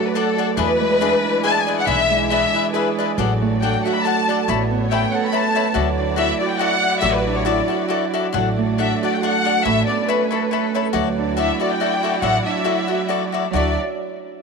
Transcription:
Already playing: harp F#3 A3 D4 F#4 A4 D5, violin section A3 F#4 D5
0.06 violin section B4
0.14 cavaquinho D4 A4 D5 F#5, harp A4, violin section A4
0.37 cavaquinho D4 A4 D5 F#5, harp D5
0.56 upright bass E2, harp E3, violin section G#3 E4 B4, cavaquinho D4 G#4 B4 E5
0.80 harp G#3
1.01 harp D4, cavaquinho D4 G#4 B4 E5
1.24 harp E4
1.43 cavaquinho D4 G#4 B4 E5, harp G#4, violin section G#5
1.51 violin section A5
1.59 violin section G#5
1.67 cavaquinho D4 G#4 B4 E5, harp D5
1.78 violin section F#5
1.87 upright bass B1, harp E3, cavaquinho D4 G#4 B4 E5, violin section E5
2.10 harp G#3
2.29 harp D4, cavaquinho D4 G#4 B4 E5, violin section E5
2.54 cavaquinho D4 G#4 B4 E5, harp E4
2.73 cavaquinho D4 G#4 B4 E5, harp G#4, violin section B4
2.98 cavaquinho D4 G#4 B4 E5, harp D5
3.18 upright bass A1, harp F#3, violin section A3 F#4, cavaquinho D4 A4 D5 F#5
3.42 harp A3
3.60 harp D4, cavaquinho D4 A4 D5 F#5, violin section G5
3.83 cavaquinho D4 A4 D5, harp F#4, violin section F#5
3.87 violin section E5 F#5, cavaquinho F#5
3.93 violin section B5
4.03 cavaquinho D4 A4 D5, harp A4, violin section A5
4.07 cavaquinho F#5
4.28 cavaquinho D4 A4 D5 F#5, harp D5
4.48 upright bass A1, harp A3, violin section B3 A4 C#5, cavaquinho C#5 E5 A5 B5
4.71 harp B3
4.90 harp C#4, cavaquinho C#5 E5 A5 B5, violin section G5
5.14 harp A4, violin section F#5
5.25 violin section B5
5.32 harp B4, cavaquinho C#5 E5 A5 B5, violin section A5
5.55 cavaquinho C#5 E5 A5 B5, harp C#5
5.74 upright bass D2, harp F#3, violin section E4 F#4 D5, cavaquinho F#4 A4 D5 E5
5.98 harp D4
6.16 harp E4, cavaquinho F#4 A4 D5 E5, violin section E5
6.39 harp F#4, violin section D5
6.48 violin section G5
6.58 cavaquinho F#4 A4 D5 E5, harp D5, violin section F#5
6.83 harp E5
6.99 upright bass A1, harp F#3, cavaquinho F#4 A4 D5 E5, violin section E5
7.13 violin section B4
7.26 harp D4
7.35 violin section C#5
7.45 harp E4, cavaquinho F#4 A4 D5 E5, violin section D5
7.68 cavaquinho F#4 A4 D5 E5, harp F#4
7.88 cavaquinho F#4 A4 D5 E5, harp D5
8.14 cavaquinho F#4 A4 D5 E5, harp E5
8.33 upright bass A1, harp F#3, violin section A3 F#4 D5, cavaquinho D4 A4 D5 F#5
8.58 harp A3
8.78 cavaquinho D4 A4 D5 F#5, harp D4, violin section E5
9.02 cavaquinho D4 A4 D5 F#5, harp F#4, violin section D5
9.13 violin section G5
9.22 cavaquinho D4 A4 D5 F#5, harp A4, violin section F#5
9.45 cavaquinho D4 A4 D5 F#5, harp D5
9.64 upright bass A1, harp A3, violin section A3 C#4 B4 E5, cavaquinho C#5 E5 A5 B5
9.87 harp B3, violin section D5
10.07 harp C#4, violin section B4, cavaquinho C#5 E5 A5 B5
10.31 violin section A4, harp A4, cavaquinho C#5 E5 A5 B5
10.42 violin section B4
10.51 violin section A4, harp B4, cavaquinho C#5 E5 A5 B5
10.75 cavaquinho C#5 E5 A5 B5, harp C#5
10.92 upright bass D2, harp F#3, violin section E4 F#4 D5, cavaquinho F#4 A4 D5 E5
11.18 harp D4
11.37 harp E4, cavaquinho F#4 A4 D5 E5, violin section E5
11.60 cavaquinho F#4 A4 D5 E5, harp F#4, violin section D5
11.70 violin section G5
11.80 cavaquinho F#4 A4 D5 E5, harp D5
12.03 cavaquinho F#4 A4 D5 E5, harp E5
12.21 upright bass A1, harp F#3, cavaquinho F#4 A4 D5 E5, violin section F#5
12.45 harp D4, violin section E5
12.64 harp E4, cavaquinho F#4 A4 D5 E5
12.87 cavaquinho F#4 A4 D5 E5, harp F#4
13.09 cavaquinho F#4 A4 D5 E5, harp D5
13.32 cavaquinho F#4 A4 D5 E5, harp E5
13.50 upright bass D2, harp F#3 D4, violin section D4 F#4 D5 E5, cavaquinho F#4 A4
13.55 harp E4, cavaquinho D5 E5

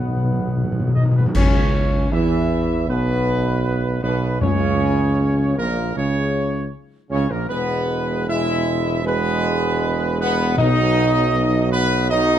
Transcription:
Already playing: tuba B1, trombone section B2 B3, french horn section B3, trumpet section D#5 F#5
0.00 timpani B2
0.08 timpani B2
0.17 timpani B2
0.24 timpani B2
0.32 timpani B2
0.39 timpani B2
0.48 timpani B2
0.56 timpani B2
0.64 timpani B2
0.72 timpani B2
0.80 timpani B2
0.87 timpani B2
0.94 timpani B2, french horn section D#4, trumpet section D#5
1.03 timpani B2
1.11 timpani B2
1.15 timpani B2, french horn section B3, trumpet section B4
1.26 timpani B2
1.34 tuba C#2, trombone section C#3, french horn section C#4, trumpet section C#5, concert bass drum, crash
2.11 tuba E2, trombone section E3, french horn section E4, trumpet section E5
2.88 tuba B1, trombone section B2, french horn section B3, trumpet section B4
4.02 tuba B1, trombone section B2, french horn section B3, trumpet section B4
4.41 tuba C#2, timpani F#2, trombone section C#3, french horn section C#4, trumpet section C#5
5.56 tuba A#1, trombone section A#2, french horn section A#3, trumpet section A#4
5.95 tuba C#2, trombone section C#3, french horn section C#4, trumpet section C#5
7.11 tuba C#2, trombone section C#3, french horn section C#4, trumpet section C#5
7.30 tuba A#1, trombone section A#2, french horn section A#3, trumpet section A#4
7.47 tuba E1, trombone section B2 G#3, french horn section B3, trumpet section B4
8.27 trombone section B2 G#3, french horn section E4, trumpet section E5
9.03 trombone section B2 G#3, french horn section B3, trumpet section B4
10.19 french horn section B3, trumpet section B4
10.57 tuba B1, timpani B2, trombone section B2 F#3, french horn section D#4, trumpet section D#5
11.70 french horn section B3, trumpet section B4
12.09 trombone section B2 F#3, french horn section D#4, trumpet section D#5

